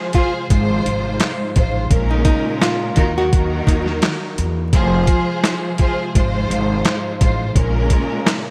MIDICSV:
0, 0, Header, 1, 6, 480
1, 0, Start_track
1, 0, Tempo, 705882
1, 1297, Time_signature, 4, 2, 24, 8
1, 5783, End_track
2, 0, Start_track
2, 0, Title_t, "String section"
2, 0, Program_c, 0, 48
2, 86, Note_on_c, 0, 53, 95
2, 91, Note_on_c, 0, 65, 93
2, 97, Note_on_c, 0, 68, 92
2, 101, Note_on_c, 0, 72, 108
2, 331, Note_off_c, 0, 53, 0
2, 334, Note_off_c, 0, 65, 0
2, 334, Note_on_c, 0, 44, 93
2, 337, Note_off_c, 0, 68, 0
2, 339, Note_off_c, 0, 72, 0
2, 340, Note_on_c, 0, 56, 87
2, 344, Note_on_c, 0, 65, 89
2, 350, Note_on_c, 0, 72, 107
2, 1004, Note_off_c, 0, 44, 0
2, 1007, Note_off_c, 0, 56, 0
2, 1009, Note_off_c, 0, 65, 0
2, 1012, Note_off_c, 0, 72, 0
2, 1053, Note_on_c, 0, 44, 81
2, 1058, Note_on_c, 0, 56, 75
2, 1063, Note_on_c, 0, 65, 77
2, 1068, Note_on_c, 0, 72, 92
2, 1278, Note_off_c, 0, 44, 0
2, 1280, Note_off_c, 0, 56, 0
2, 1283, Note_off_c, 0, 65, 0
2, 1285, Note_off_c, 0, 72, 0
2, 1286, Note_on_c, 0, 46, 104
2, 1291, Note_on_c, 0, 56, 97
2, 1296, Note_on_c, 0, 61, 88
2, 1301, Note_on_c, 0, 70, 108
2, 1996, Note_on_c, 0, 51, 107
2, 2002, Note_on_c, 0, 63, 101
2, 2004, Note_off_c, 0, 70, 0
2, 2007, Note_on_c, 0, 66, 93
2, 2012, Note_off_c, 0, 46, 0
2, 2012, Note_on_c, 0, 70, 113
2, 2014, Note_off_c, 0, 56, 0
2, 2017, Note_off_c, 0, 61, 0
2, 2133, Note_off_c, 0, 51, 0
2, 2138, Note_off_c, 0, 63, 0
2, 2141, Note_on_c, 0, 51, 92
2, 2143, Note_off_c, 0, 66, 0
2, 2146, Note_on_c, 0, 63, 88
2, 2149, Note_off_c, 0, 70, 0
2, 2151, Note_on_c, 0, 66, 85
2, 2157, Note_on_c, 0, 70, 90
2, 2242, Note_off_c, 0, 51, 0
2, 2247, Note_off_c, 0, 63, 0
2, 2250, Note_on_c, 0, 51, 104
2, 2252, Note_off_c, 0, 66, 0
2, 2255, Note_on_c, 0, 63, 85
2, 2257, Note_off_c, 0, 70, 0
2, 2261, Note_on_c, 0, 66, 93
2, 2266, Note_on_c, 0, 70, 104
2, 3032, Note_off_c, 0, 51, 0
2, 3035, Note_off_c, 0, 63, 0
2, 3037, Note_off_c, 0, 66, 0
2, 3040, Note_off_c, 0, 70, 0
2, 3215, Note_on_c, 0, 53, 106
2, 3220, Note_on_c, 0, 65, 96
2, 3225, Note_on_c, 0, 68, 100
2, 3231, Note_on_c, 0, 72, 111
2, 3884, Note_off_c, 0, 53, 0
2, 3887, Note_off_c, 0, 65, 0
2, 3889, Note_off_c, 0, 68, 0
2, 3892, Note_off_c, 0, 72, 0
2, 3926, Note_on_c, 0, 53, 94
2, 3931, Note_on_c, 0, 65, 91
2, 3936, Note_on_c, 0, 68, 91
2, 3941, Note_on_c, 0, 72, 108
2, 4171, Note_off_c, 0, 53, 0
2, 4174, Note_off_c, 0, 65, 0
2, 4174, Note_on_c, 0, 44, 97
2, 4177, Note_off_c, 0, 68, 0
2, 4179, Note_off_c, 0, 72, 0
2, 4179, Note_on_c, 0, 56, 95
2, 4184, Note_on_c, 0, 65, 87
2, 4189, Note_on_c, 0, 72, 112
2, 4844, Note_off_c, 0, 44, 0
2, 4846, Note_off_c, 0, 56, 0
2, 4849, Note_off_c, 0, 65, 0
2, 4851, Note_off_c, 0, 72, 0
2, 4890, Note_on_c, 0, 44, 80
2, 4896, Note_on_c, 0, 56, 73
2, 4902, Note_on_c, 0, 65, 78
2, 4906, Note_on_c, 0, 72, 89
2, 5117, Note_off_c, 0, 44, 0
2, 5119, Note_off_c, 0, 56, 0
2, 5122, Note_off_c, 0, 65, 0
2, 5124, Note_off_c, 0, 72, 0
2, 5124, Note_on_c, 0, 46, 106
2, 5129, Note_on_c, 0, 56, 96
2, 5134, Note_on_c, 0, 61, 91
2, 5139, Note_on_c, 0, 70, 104
2, 5783, Note_off_c, 0, 46, 0
2, 5783, Note_off_c, 0, 56, 0
2, 5783, Note_off_c, 0, 61, 0
2, 5783, Note_off_c, 0, 70, 0
2, 5783, End_track
3, 0, Start_track
3, 0, Title_t, "Nylon-string guitar"
3, 0, Program_c, 1, 24
3, 102, Note_on_c, 1, 65, 86
3, 219, Note_off_c, 1, 65, 0
3, 1432, Note_on_c, 1, 63, 75
3, 1521, Note_off_c, 1, 63, 0
3, 1529, Note_on_c, 1, 63, 87
3, 1749, Note_off_c, 1, 63, 0
3, 1784, Note_on_c, 1, 65, 87
3, 2131, Note_off_c, 1, 65, 0
3, 2160, Note_on_c, 1, 66, 84
3, 2252, Note_off_c, 1, 66, 0
3, 2494, Note_on_c, 1, 63, 78
3, 2614, Note_off_c, 1, 63, 0
3, 5783, End_track
4, 0, Start_track
4, 0, Title_t, "Analog synth pad"
4, 0, Program_c, 2, 89
4, 0, Note_on_c, 2, 48, 84
4, 0, Note_on_c, 2, 53, 78
4, 0, Note_on_c, 2, 56, 79
4, 0, Note_on_c, 2, 65, 89
4, 327, Note_off_c, 2, 48, 0
4, 332, Note_off_c, 2, 65, 0
4, 336, Note_on_c, 2, 48, 77
4, 336, Note_on_c, 2, 63, 90
4, 1283, Note_off_c, 2, 53, 0
4, 1287, Note_off_c, 2, 48, 0
4, 1287, Note_off_c, 2, 63, 0
4, 1299, Note_on_c, 2, 49, 85
4, 1299, Note_on_c, 2, 65, 86
4, 1300, Note_on_c, 2, 58, 71
4, 1995, Note_off_c, 2, 56, 0
4, 2000, Note_off_c, 2, 58, 0
4, 2007, Note_on_c, 2, 54, 70
4, 2008, Note_on_c, 2, 51, 90
4, 2008, Note_on_c, 2, 58, 79
4, 2008, Note_on_c, 2, 66, 93
4, 2011, Note_off_c, 2, 49, 0
4, 2011, Note_off_c, 2, 65, 0
4, 3200, Note_off_c, 2, 54, 0
4, 3200, Note_off_c, 2, 58, 0
4, 3200, Note_off_c, 2, 66, 0
4, 3201, Note_off_c, 2, 51, 0
4, 3224, Note_on_c, 2, 48, 89
4, 3224, Note_on_c, 2, 53, 75
4, 3224, Note_on_c, 2, 56, 80
4, 3224, Note_on_c, 2, 65, 85
4, 4171, Note_off_c, 2, 65, 0
4, 4173, Note_on_c, 2, 63, 90
4, 5121, Note_off_c, 2, 48, 0
4, 5121, Note_off_c, 2, 53, 0
4, 5121, Note_off_c, 2, 56, 0
4, 5126, Note_off_c, 2, 63, 0
4, 5138, Note_on_c, 2, 49, 81
4, 5138, Note_on_c, 2, 56, 72
4, 5138, Note_on_c, 2, 58, 73
4, 5139, Note_on_c, 2, 65, 86
4, 5783, Note_off_c, 2, 49, 0
4, 5783, Note_off_c, 2, 56, 0
4, 5783, Note_off_c, 2, 58, 0
4, 5783, Note_off_c, 2, 65, 0
4, 5783, End_track
5, 0, Start_track
5, 0, Title_t, "Upright bass"
5, 0, Program_c, 3, 32
5, 345, Note_on_c, 3, 32, 104
5, 558, Note_off_c, 3, 32, 0
5, 583, Note_on_c, 3, 32, 89
5, 796, Note_off_c, 3, 32, 0
5, 1065, Note_on_c, 3, 33, 96
5, 1277, Note_off_c, 3, 33, 0
5, 1298, Note_on_c, 3, 34, 100
5, 1513, Note_off_c, 3, 34, 0
5, 2021, Note_on_c, 3, 39, 100
5, 2451, Note_off_c, 3, 39, 0
5, 2499, Note_on_c, 3, 39, 96
5, 2714, Note_off_c, 3, 39, 0
5, 2981, Note_on_c, 3, 40, 95
5, 3195, Note_off_c, 3, 40, 0
5, 3218, Note_on_c, 3, 29, 107
5, 3433, Note_off_c, 3, 29, 0
5, 4186, Note_on_c, 3, 32, 103
5, 4398, Note_off_c, 3, 32, 0
5, 4421, Note_on_c, 3, 32, 93
5, 4635, Note_off_c, 3, 32, 0
5, 4906, Note_on_c, 3, 33, 102
5, 5118, Note_off_c, 3, 33, 0
5, 5141, Note_on_c, 3, 34, 100
5, 5355, Note_off_c, 3, 34, 0
5, 5783, End_track
6, 0, Start_track
6, 0, Title_t, "Drums"
6, 89, Note_on_c, 9, 42, 74
6, 99, Note_on_c, 9, 36, 91
6, 157, Note_off_c, 9, 42, 0
6, 167, Note_off_c, 9, 36, 0
6, 342, Note_on_c, 9, 42, 87
6, 343, Note_on_c, 9, 36, 93
6, 410, Note_off_c, 9, 42, 0
6, 411, Note_off_c, 9, 36, 0
6, 585, Note_on_c, 9, 42, 79
6, 653, Note_off_c, 9, 42, 0
6, 814, Note_on_c, 9, 42, 82
6, 819, Note_on_c, 9, 38, 115
6, 823, Note_on_c, 9, 39, 96
6, 882, Note_off_c, 9, 42, 0
6, 887, Note_off_c, 9, 38, 0
6, 891, Note_off_c, 9, 39, 0
6, 1059, Note_on_c, 9, 42, 84
6, 1062, Note_on_c, 9, 36, 103
6, 1127, Note_off_c, 9, 42, 0
6, 1130, Note_off_c, 9, 36, 0
6, 1296, Note_on_c, 9, 36, 106
6, 1296, Note_on_c, 9, 42, 88
6, 1364, Note_off_c, 9, 36, 0
6, 1364, Note_off_c, 9, 42, 0
6, 1529, Note_on_c, 9, 42, 81
6, 1532, Note_on_c, 9, 36, 94
6, 1597, Note_off_c, 9, 42, 0
6, 1600, Note_off_c, 9, 36, 0
6, 1778, Note_on_c, 9, 38, 120
6, 1783, Note_on_c, 9, 39, 97
6, 1788, Note_on_c, 9, 42, 100
6, 1846, Note_off_c, 9, 38, 0
6, 1851, Note_off_c, 9, 39, 0
6, 1856, Note_off_c, 9, 42, 0
6, 2012, Note_on_c, 9, 42, 78
6, 2019, Note_on_c, 9, 36, 91
6, 2080, Note_off_c, 9, 42, 0
6, 2087, Note_off_c, 9, 36, 0
6, 2262, Note_on_c, 9, 42, 84
6, 2263, Note_on_c, 9, 36, 95
6, 2330, Note_off_c, 9, 42, 0
6, 2331, Note_off_c, 9, 36, 0
6, 2497, Note_on_c, 9, 36, 100
6, 2506, Note_on_c, 9, 42, 83
6, 2565, Note_off_c, 9, 36, 0
6, 2574, Note_off_c, 9, 42, 0
6, 2626, Note_on_c, 9, 38, 36
6, 2694, Note_off_c, 9, 38, 0
6, 2734, Note_on_c, 9, 42, 83
6, 2739, Note_on_c, 9, 38, 120
6, 2743, Note_on_c, 9, 39, 92
6, 2802, Note_off_c, 9, 42, 0
6, 2807, Note_off_c, 9, 38, 0
6, 2811, Note_off_c, 9, 39, 0
6, 2979, Note_on_c, 9, 42, 85
6, 3047, Note_off_c, 9, 42, 0
6, 3215, Note_on_c, 9, 42, 90
6, 3216, Note_on_c, 9, 36, 107
6, 3283, Note_off_c, 9, 42, 0
6, 3284, Note_off_c, 9, 36, 0
6, 3450, Note_on_c, 9, 42, 81
6, 3452, Note_on_c, 9, 36, 90
6, 3518, Note_off_c, 9, 42, 0
6, 3520, Note_off_c, 9, 36, 0
6, 3697, Note_on_c, 9, 38, 118
6, 3702, Note_on_c, 9, 39, 96
6, 3707, Note_on_c, 9, 42, 99
6, 3765, Note_off_c, 9, 38, 0
6, 3770, Note_off_c, 9, 39, 0
6, 3775, Note_off_c, 9, 42, 0
6, 3932, Note_on_c, 9, 42, 74
6, 3940, Note_on_c, 9, 36, 88
6, 4000, Note_off_c, 9, 42, 0
6, 4008, Note_off_c, 9, 36, 0
6, 4184, Note_on_c, 9, 36, 92
6, 4184, Note_on_c, 9, 42, 89
6, 4252, Note_off_c, 9, 36, 0
6, 4252, Note_off_c, 9, 42, 0
6, 4428, Note_on_c, 9, 42, 80
6, 4496, Note_off_c, 9, 42, 0
6, 4655, Note_on_c, 9, 42, 82
6, 4661, Note_on_c, 9, 38, 119
6, 4665, Note_on_c, 9, 39, 93
6, 4723, Note_off_c, 9, 42, 0
6, 4729, Note_off_c, 9, 38, 0
6, 4733, Note_off_c, 9, 39, 0
6, 4902, Note_on_c, 9, 42, 82
6, 4904, Note_on_c, 9, 36, 104
6, 4970, Note_off_c, 9, 42, 0
6, 4972, Note_off_c, 9, 36, 0
6, 5138, Note_on_c, 9, 36, 107
6, 5139, Note_on_c, 9, 42, 86
6, 5206, Note_off_c, 9, 36, 0
6, 5207, Note_off_c, 9, 42, 0
6, 5372, Note_on_c, 9, 42, 83
6, 5374, Note_on_c, 9, 36, 91
6, 5440, Note_off_c, 9, 42, 0
6, 5442, Note_off_c, 9, 36, 0
6, 5620, Note_on_c, 9, 38, 122
6, 5625, Note_on_c, 9, 39, 98
6, 5630, Note_on_c, 9, 42, 99
6, 5688, Note_off_c, 9, 38, 0
6, 5693, Note_off_c, 9, 39, 0
6, 5698, Note_off_c, 9, 42, 0
6, 5783, End_track
0, 0, End_of_file